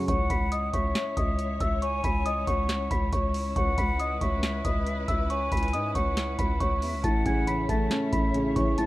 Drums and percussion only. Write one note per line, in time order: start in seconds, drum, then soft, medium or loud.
0.08 kick loud
0.08 closed hi-hat medium
0.30 kick loud
0.30 closed hi-hat medium
0.52 closed hi-hat medium
0.73 kick medium
0.73 closed hi-hat medium
0.95 snare loud
0.95 closed hi-hat medium
1.17 kick loud
1.17 closed hi-hat medium
1.39 closed hi-hat medium
1.60 kick loud
1.60 closed hi-hat medium
1.82 closed hi-hat medium
2.04 kick loud
2.04 closed hi-hat medium
2.26 closed hi-hat medium
2.47 kick medium
2.47 closed hi-hat medium
2.69 snare loud
2.69 closed hi-hat medium
2.91 kick loud
2.91 closed hi-hat medium
3.13 kick loud
3.13 closed hi-hat medium
3.34 open hi-hat medium
3.56 kick loud
3.56 closed hi-hat medium
3.78 kick loud
3.78 closed hi-hat medium
4.00 closed hi-hat medium
4.21 kick medium
4.21 closed hi-hat medium
4.43 snare loud
4.43 closed hi-hat medium
4.65 kick loud
4.65 closed hi-hat medium
4.87 closed hi-hat medium
5.08 kick loud
5.08 closed hi-hat medium
5.30 closed hi-hat medium
5.52 kick loud
5.52 closed hi-hat medium
5.57 closed hi-hat medium
5.63 closed hi-hat medium
5.68 closed hi-hat soft
5.73 closed hi-hat medium
5.95 kick medium
5.95 closed hi-hat medium
6.17 snare loud
6.17 closed hi-hat medium
6.39 kick loud
6.39 closed hi-hat medium
6.60 kick loud
6.60 closed hi-hat medium
6.82 open hi-hat medium
7.04 kick loud
7.04 closed hi-hat medium
7.26 kick loud
7.26 closed hi-hat medium
7.47 closed hi-hat medium
7.69 kick medium
7.69 closed hi-hat medium
7.91 snare loud
7.91 closed hi-hat medium
8.13 kick loud
8.13 closed hi-hat medium
8.34 closed hi-hat medium
8.56 kick loud
8.56 closed hi-hat medium
8.78 closed hi-hat medium